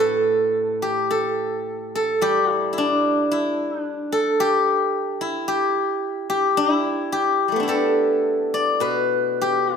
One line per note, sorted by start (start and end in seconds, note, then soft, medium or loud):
0.00 3.32 A2 medium
0.00 0.82 D3 medium
0.00 0.23 D4 medium
0.00 0.88 E4 medium
0.00 0.82 G4 medium
0.00 1.10 A4 medium
0.00 1.76 B4 medium
0.82 2.22 G4 medium
1.11 1.95 A4 medium
1.95 4.12 A4 medium
2.22 5.49 G3 medium
2.22 2.53 G4 loud
2.53 2.73 E4 loud
2.73 3.31 E4 medium
2.78 3.82 D4 medium
3.32 3.82 E4 medium
3.82 5.21 D4 medium
4.12 6.32 A4 medium
4.40 5.47 G4 loud
5.21 6.57 E4 medium
5.48 6.29 G4 medium
6.30 7.12 G4 medium
6.57 7.62 E4 loud
7.12 7.67 G4 medium
7.48 7.75 G3 soft
7.48 9.77 A3 soft
7.56 9.77 B3 medium
7.56 9.77 D4 medium
7.63 9.76 E4 medium
7.68 9.41 G4 medium
7.68 9.77 A4 medium
8.54 9.77 D5 medium
8.80 9.77 B2 medium
8.80 9.77 B4 medium
9.41 9.76 G4 medium